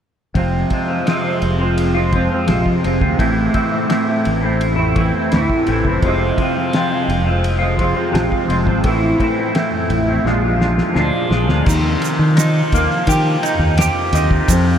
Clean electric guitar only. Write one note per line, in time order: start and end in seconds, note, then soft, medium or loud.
0.34 1.04 F2 medium
0.34 1.05 C3 medium
0.34 0.68 F3 medium
0.34 0.70 G#3 medium
0.34 0.72 C4 loud
0.34 0.73 F4 medium
0.70 0.91 F3 medium
0.70 0.89 G#3 medium
0.70 0.89 C4 medium
0.74 0.87 F4 medium
0.88 1.05 F3 soft
0.88 1.06 G#3 medium
0.88 1.08 C4 medium
0.88 1.08 F4 medium
1.05 1.59 F2 medium
1.05 1.60 C3 medium
1.05 1.24 F3 medium
1.05 1.23 G#3 medium
1.05 1.23 C4 loud
1.09 1.21 F4 medium
1.22 1.61 F3 medium
1.22 1.60 G#3 soft
1.22 1.60 C4 medium
1.22 1.58 F4 medium
1.59 1.97 F3 medium
1.59 1.96 G#3 medium
1.59 1.96 C4 medium
1.59 1.93 F4 medium
1.94 2.11 F3 soft
1.94 2.12 G#3 medium
1.94 2.15 C4 medium
1.94 2.15 F4 medium
2.13 2.32 F3 medium
2.13 2.31 G#3 medium
2.13 2.31 C4 medium
2.13 2.29 F4 medium
2.30 2.46 F3 medium
2.30 2.47 G#3 medium
2.30 2.48 C4 medium
2.30 2.48 F4 medium
2.46 3.16 F2 medium
2.46 3.16 C3 medium
2.46 2.80 F3 medium
2.46 2.82 G#3 medium
2.46 2.84 C4 medium
2.46 2.84 F4 medium
2.82 3.02 F3 medium
2.82 3.02 G#3 medium
2.82 3.01 C4 medium
2.86 2.99 F4 medium
3.00 3.18 F3 soft
3.00 3.18 G#3 medium
3.00 3.19 C4 medium
3.00 3.17 F4 medium
3.17 3.85 A2 medium
3.17 3.51 E3 medium
3.17 3.53 A3 medium
3.17 3.54 C4 medium
3.17 3.54 E4 medium
3.52 3.87 E3 medium
3.52 3.74 A3 medium
3.52 3.73 C4 medium
3.52 3.70 E4 medium
3.71 3.88 A3 soft
3.71 3.89 C4 medium
3.71 3.88 E4 medium
3.86 4.41 A2 medium
3.86 4.42 E3 medium
3.86 4.08 A3 medium
3.86 4.08 C4 medium
3.86 4.05 E4 medium
4.06 4.43 A3 soft
4.06 4.42 C4 medium
4.06 4.40 E4 medium
4.41 4.78 A3 medium
4.41 4.77 C4 medium
4.41 4.75 E4 medium
4.76 4.94 A3 soft
4.76 4.97 C4 medium
4.76 4.97 E4 medium
4.95 5.32 E3 medium
4.95 5.17 A3 medium
4.95 5.15 C4 medium
4.95 5.13 E4 medium
5.14 5.33 A3 soft
5.14 5.34 C4 medium
5.14 5.34 E4 medium
5.32 6.01 A2 medium
5.32 5.65 E3 medium
5.32 5.67 A3 medium
5.32 5.68 C4 medium
5.32 5.69 E4 medium
5.67 6.00 E3 medium
5.67 5.89 A3 medium
5.67 5.87 C4 medium
5.67 5.85 E4 medium
5.86 6.03 A3 medium
5.86 6.06 C4 soft
5.86 6.01 E4 medium
6.03 6.71 F2 medium
6.03 6.72 C3 medium
6.03 6.38 F3 medium
6.03 6.39 G#3 medium
6.03 6.40 C4 medium
6.03 6.41 F4 medium
6.39 6.58 F3 medium
6.39 6.56 G#3 medium
6.39 6.56 C4 medium
6.39 6.55 F4 medium
6.56 6.73 F3 medium
6.56 6.74 G#3 medium
6.56 6.75 C4 medium
6.56 6.75 F4 medium
6.73 7.26 F2 medium
6.73 7.27 C3 medium
6.73 6.92 F3 medium
6.73 6.91 G#3 medium
6.73 6.90 C4 medium
6.73 6.89 F4 medium
6.90 7.28 F3 soft
6.90 7.27 G#3 medium
6.90 7.25 C4 medium
6.90 7.23 F4 medium
7.25 7.61 G#3 soft
7.25 7.60 C4 medium
7.25 7.58 F4 medium
7.29 7.62 F3 soft
7.59 7.78 G#3 medium
7.59 7.79 C4 medium
7.59 7.80 F4 medium
7.63 7.76 F3 medium
7.77 7.96 F3 medium
7.77 7.95 G#3 medium
7.77 7.95 C4 medium
7.77 7.93 F4 medium
7.94 8.11 F3 medium
7.94 8.12 G#3 medium
7.94 8.13 C4 medium
7.94 8.13 F4 medium
8.11 8.82 F2 medium
8.11 8.82 C3 medium
8.11 8.45 F3 medium
8.11 8.47 G#3 medium
8.11 8.49 C4 medium
8.11 8.49 F4 medium
8.46 8.68 F3 medium
8.46 8.67 G#3 medium
8.46 8.66 C4 medium
8.50 8.64 F4 medium
8.66 8.84 F3 medium
8.66 8.84 G#3 medium
8.66 8.83 C4 medium
8.66 8.82 F4 medium
8.83 9.52 A2 medium
8.83 9.17 E3 medium
8.83 9.18 A3 medium
8.83 9.19 C4 loud
8.83 9.20 E4 medium
9.18 9.53 E3 medium
9.18 9.39 A3 medium
9.18 9.38 C4 medium
9.18 9.37 E4 medium
9.38 9.54 A3 medium
9.38 9.54 C4 medium
9.38 9.55 E4 medium
9.54 10.08 A2 medium
9.54 10.08 E3 medium
9.54 9.74 A3 medium
9.54 9.73 C4 medium
9.54 9.71 E4 medium
9.72 10.09 A3 medium
9.72 10.08 C4 medium
9.72 10.06 E4 medium
10.08 10.25 A3 soft
10.08 10.24 C4 medium
10.08 10.24 E4 medium
10.25 10.79 A#2 medium
10.25 10.56 F3 medium
10.25 10.44 G#3 medium
10.25 10.42 D4 medium
10.25 10.41 F4 medium
10.42 10.58 G#3 medium
10.42 10.59 D4 medium
10.42 10.60 F4 medium
10.57 10.94 F3 medium
10.57 10.79 G#3 medium
10.57 10.77 D4 medium
10.61 10.75 F4 medium
10.76 10.95 D4 medium
10.76 10.96 F4 medium
10.80 10.94 G#3 medium
10.94 11.64 A#2 medium
10.94 11.28 F3 medium
10.94 11.29 G#3 medium
10.94 11.31 D4 loud
10.94 11.32 F4 loud
11.29 11.64 F3 medium
11.29 11.50 G#3 medium
11.29 11.49 D4 medium
11.29 11.46 F4 medium
11.48 11.66 G#3 medium
11.48 11.65 D4 medium
11.48 11.64 F4 medium
11.65 13.42 D#3 medium
12.37 13.42 D#4 medium
12.74 14.49 A#3 medium
13.09 13.77 G4 medium
13.43 14.14 D#4 medium
13.79 14.49 G4 medium
14.15 14.49 D#4 medium
14.50 14.78 F2 medium